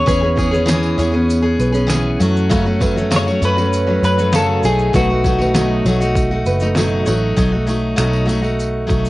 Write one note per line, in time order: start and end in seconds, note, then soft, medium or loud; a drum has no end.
0.00 2.17 C#5 medium
0.06 0.95 E2 loud
0.06 0.22 E3 medium
0.06 0.22 B3 medium
0.06 0.22 C#4 medium
0.06 0.20 G#4 medium
0.06 0.36 B4 medium
0.06 kick loud
0.06 tambourine medium
0.06 shaker medium
0.21 0.35 B3 soft
0.21 0.36 C#4 soft
0.21 0.37 G#4 soft
0.35 0.52 E3 medium
0.35 0.52 B3 medium
0.35 0.52 C#4 medium
0.35 0.50 G#4 medium
0.35 kick medium
0.35 tambourine soft
0.35 shaker soft
0.51 0.64 B3 soft
0.51 0.65 C#4 soft
0.51 0.66 G#4 medium
0.51 0.67 B4 medium
0.51 snare soft
0.51 shaker soft
0.66 0.96 E3 medium
0.66 0.97 B3 loud
0.66 0.98 C#4 loud
0.66 0.98 G#4 loud
0.66 snare loud
0.66 tambourine loud
0.66 shaker medium
0.83 tambourine soft
0.98 1.55 E2 loud
0.98 1.13 E3 medium
0.98 1.13 B3 medium
0.98 1.12 C#4 medium
0.98 1.11 G#4 medium
0.98 1.28 C#5 medium
0.98 tambourine soft
0.98 shaker medium
1.12 1.44 B3 medium
1.12 1.43 C#4 medium
1.12 1.41 G#4 medium
1.30 tambourine medium
1.30 shaker medium
1.42 1.74 B3 soft
1.42 1.73 C#4 soft
1.42 1.71 G#4 medium
1.59 2.16 B1 medium
1.59 1.88 B4 medium
1.59 tambourine soft
1.59 shaker medium
1.72 1.87 B3 soft
1.72 1.87 C#4 soft
1.72 1.88 G#4 medium
1.72 tambourine soft
1.72 shaker medium
1.87 2.19 E3 medium
1.87 2.19 B3 medium
1.87 2.20 C#4 medium
1.87 2.20 G#4 medium
1.87 snare loud
1.87 tambourine medium
1.87 shaker medium
2.20 3.38 F#2 loud
2.20 2.50 F#3 medium
2.20 2.50 A3 medium
2.20 2.50 C#4 medium
2.20 2.50 F#4 medium
2.20 2.35 C#5 medium
2.20 tambourine medium
2.20 shaker medium
2.37 shaker soft
2.49 2.65 F#2 medium
2.49 2.66 C#3 loud
2.49 2.66 F#3 loud
2.49 2.65 A3 medium
2.49 2.65 C#4 medium
2.49 2.64 F#4 loud
2.49 kick loud
2.49 tambourine soft
2.49 shaker medium
2.66 2.79 F#3 soft
2.66 2.80 A3 medium
2.66 2.81 C#4 medium
2.66 2.81 F#4 medium
2.80 2.96 F#3 medium
2.80 2.96 A3 medium
2.80 2.96 C#4 medium
2.80 2.95 F#4 medium
2.80 2.95 B4 medium
2.80 kick medium
2.80 tambourine soft
2.80 shaker soft
2.96 3.10 F#3 soft
2.96 3.10 A3 soft
2.96 3.11 C#4 medium
2.96 3.10 F#4 soft
2.96 snare soft
2.96 shaker soft
3.10 3.26 F#2 medium
3.10 3.26 C#3 medium
3.10 3.27 F#3 medium
3.10 3.27 A3 medium
3.10 3.27 C#4 medium
3.10 3.26 F#4 loud
3.10 snare loud
3.10 tambourine loud
3.10 shaker medium
3.16 3.45 C#5 loud
3.27 3.40 F#3 soft
3.27 3.41 A3 soft
3.27 3.42 C#4 soft
3.27 3.42 F#4 medium
3.27 tambourine soft
3.42 3.99 F#2 medium
3.42 3.57 F#3 medium
3.42 3.57 A3 medium
3.42 3.57 C#4 medium
3.42 3.55 F#4 medium
3.42 4.04 B4 loud
3.42 3.71 C#5 medium
3.42 tambourine soft
3.42 shaker medium
3.57 3.87 F#3 soft
3.57 3.86 A3 medium
3.57 3.86 C#4 medium
3.57 3.85 F#4 medium
3.57 tambourine soft
3.73 tambourine soft
3.73 shaker medium
3.87 4.18 F#3 soft
3.87 4.18 A3 soft
3.87 4.17 C#4 soft
3.87 4.16 F#4 soft
4.02 4.59 F#2 medium
4.02 4.32 B4 medium
4.02 4.35 B4 medium
4.02 tambourine soft
4.02 shaker medium
4.17 4.32 F#3 soft
4.17 4.32 A3 soft
4.17 4.33 C#4 soft
4.17 4.33 F#4 soft
4.17 tambourine soft
4.17 shaker medium
4.32 4.63 F#2 medium
4.32 4.63 C#3 medium
4.32 4.62 F#3 medium
4.32 4.63 A3 medium
4.32 4.64 C#4 medium
4.32 4.64 F#4 medium
4.32 4.63 A4 medium
4.32 snare loud
4.32 tambourine medium
4.32 shaker medium
4.63 4.91 B1 medium
4.63 4.93 F#3 medium
4.63 4.93 A3 medium
4.63 4.93 D#4 medium
4.63 4.94 F#4 medium
4.63 4.95 G#4 medium
4.63 4.78 A4 medium
4.63 tambourine medium
4.63 shaker medium
4.79 shaker soft
4.93 5.81 B1 loud
4.93 5.09 B2 medium
4.93 5.09 F#3 medium
4.93 5.10 A3 medium
4.93 5.09 D#4 medium
4.93 5.08 F#4 medium
4.93 6.73 F#4 medium
4.93 5.23 B4 loud
4.93 kick loud
4.93 tambourine soft
4.93 shaker medium
5.09 5.24 A3 soft
5.09 5.25 D#4 soft
5.09 5.24 F#4 soft
5.24 5.40 F#3 medium
5.24 5.40 A3 medium
5.24 5.39 D#4 medium
5.24 5.37 F#4 medium
5.24 kick medium
5.24 tambourine soft
5.24 shaker soft
5.38 5.53 A3 soft
5.38 5.54 D#4 soft
5.38 5.54 F#4 medium
5.38 5.55 B4 medium
5.38 snare soft
5.38 tambourine soft
5.54 5.85 B2 medium
5.54 5.85 F#3 medium
5.54 5.85 A3 medium
5.54 5.86 D#4 medium
5.54 5.86 F#4 medium
5.54 snare loud
5.54 tambourine medium
5.54 shaker medium
5.85 6.42 B1 medium
5.85 6.01 F#3 medium
5.85 6.01 A3 medium
5.85 6.01 D#4 medium
5.85 5.99 F#4 medium
5.85 6.15 C#5 medium
5.85 tambourine soft
5.85 shaker medium
6.00 6.32 A3 medium
6.00 6.31 D#4 medium
6.00 6.30 F#4 medium
6.00 tambourine soft
6.00 shaker medium
6.15 kick medium
6.15 tambourine soft
6.15 shaker medium
6.31 6.62 A3 soft
6.31 6.61 D#4 soft
6.31 6.60 F#4 medium
6.46 7.03 F#1 medium
6.46 6.75 B4 medium
6.46 tambourine soft
6.46 shaker medium
6.60 6.74 A3 soft
6.60 6.76 D#4 medium
6.60 6.76 F#4 soft
6.60 tambourine soft
6.60 shaker medium
6.75 7.07 B2 medium
6.75 7.05 F#3 medium
6.75 7.05 A3 medium
6.75 7.06 D#4 medium
6.75 7.06 F#4 loud
6.75 snare loud
6.75 tambourine medium
6.75 shaker medium
7.06 7.35 A1 medium
7.06 7.35 F#3 medium
7.06 7.36 A3 medium
7.06 7.36 D#4 medium
7.06 7.37 F#4 medium
7.06 7.21 C#5 medium
7.06 tambourine medium
7.06 shaker medium
7.36 7.94 B1 medium
7.36 7.52 B2 medium
7.36 7.52 F#3 medium
7.36 7.53 A3 medium
7.36 7.52 D#4 medium
7.36 7.51 F#4 medium
7.36 kick loud
7.36 tambourine medium
7.36 shaker medium
7.52 7.66 A3 soft
7.52 7.67 D#4 soft
7.52 7.68 F#4 soft
7.66 7.95 F#3 medium
7.66 7.96 A3 medium
7.66 7.96 D#4 medium
7.66 7.97 F#4 medium
7.66 tambourine soft
7.66 shaker soft
7.96 8.85 B1 medium
7.96 8.28 B2 medium
7.96 8.24 F#3 medium
7.96 8.25 A3 medium
7.96 8.26 D#4 medium
7.96 8.26 F#4 medium
7.96 finger snap loud
7.96 tambourine medium
7.96 shaker medium
8.13 tambourine soft
8.26 8.42 F#3 medium
8.26 8.42 A3 medium
8.26 8.41 D#4 medium
8.26 8.40 F#4 medium
8.26 tambourine soft
8.26 shaker medium
8.42 8.87 A3 medium
8.42 8.87 D#4 medium
8.42 8.88 F#4 medium
8.42 tambourine soft
8.59 tambourine soft
8.59 shaker medium
8.87 9.10 B1 medium
8.87 9.10 F#3 medium
8.87 9.10 A3 medium
8.87 9.10 D#4 medium
8.87 9.10 F#4 medium
8.87 kick medium
8.87 tambourine soft
8.87 shaker soft
9.05 tambourine soft
9.05 shaker medium